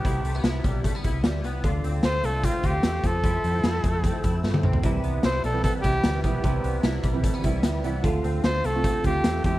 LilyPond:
<<
  \new Staff \with { instrumentName = "Trumpet" } { \time 4/4 \key c \major \tempo 4 = 150 g'4 r2. | r4 c''8 a'8 f'8 g'4 a'8~ | a'2. r4 | r4 c''8 a'8 a'8 g'4 g'8~ |
g'4 r2. | r4 c''8 a'4 g'4 g'8 | }
  \new Staff \with { instrumentName = "Steel-string acoustic guitar" } { \time 4/4 \key c \major r1 | r1 | r1 | <c e g c' e' b'>4 <g c' e' b'>8. <c e g c' e' b'>8. <c e g c' e' b'>4 <c e g c' e' b'>8 |
<c e g c' e' b'>4 <g c' e' b'>8. <c e g c' e' b'>8. <c e g c' e' b'>4 <c e g c' e' b'>8 | <d a c' f' a'>4 <a f' a'>8. <d a c' f' a'>8. <d a c' f' a'>4 <f a c' e' a'>8 | }
  \new Staff \with { instrumentName = "Clean electric guitar" } { \time 4/4 \key c \major <c g b e'>8 a16 b16 e'8 g8 a16 b16 e'8 g8 b8 | <d f'>8 c'8 f'8 a8 c'8 f'8 a8 f8 | <f e'>8 c'8 e'8 a8 c'8 e'8 a8 c'8 | <c e'>8 b8 e'8 g8 b8 e'8 g8 b8 |
<c e'>8 b8 e'8 g8 a16 b16 e'8 g8 b8 | <d f'>8 c'8 f'8 a8 c'8 f'8 a8 f8 | }
  \new Staff \with { instrumentName = "Fingered electric bass" } { \clef bass \time 4/4 \key c \major c,8 c,8 c,8 b,,8. r16 c,8 d,8 c,8 | d,8 d,8 d,8 c,8. r16 d,8 e,8 f,8~ | f,8 f,8 f,8 f,8. r16 f,8 g,8 b,,8 | c,8 c,8 c,8 b,,8. r16 c,8 d,8 b,,8 |
c,8 c,8 c,8 b,,8. r16 c,8 d,8 c,8 | d,8 d,8 d,8 c,8. r16 d,8 e,8 f,8 | }
  \new DrumStaff \with { instrumentName = "Drums" } \drummode { \time 4/4 <hh bd>8 hh8 <hh sn>8 <hh bd>8 <hh bd>8 <hh bd>8 <hh sn>8 hh8 | <hh bd>8 hh8 <hh sn>8 hh8 <hh bd>8 <hh bd>8 <hh sn>8 <hh bd>8 | <hh bd>8 hh8 <hh sn>8 <hh bd>8 <hh bd>8 <hh bd>8 sn16 tommh16 toml16 tomfh16 | <hh bd>8 hh8 <hh sn>8 hh8 <hh bd>8 <hh bd>8 <hh sn>8 <hh bd>8 |
<hh bd>8 hh8 <hh sn>8 <hh bd>8 <hh bd>8 <hh bd>8 <hh sn>8 hh8 | <hh bd>8 hh8 <hh sn>8 hh8 <hh bd>8 <hh bd>8 <hh sn>8 <hh bd>8 | }
>>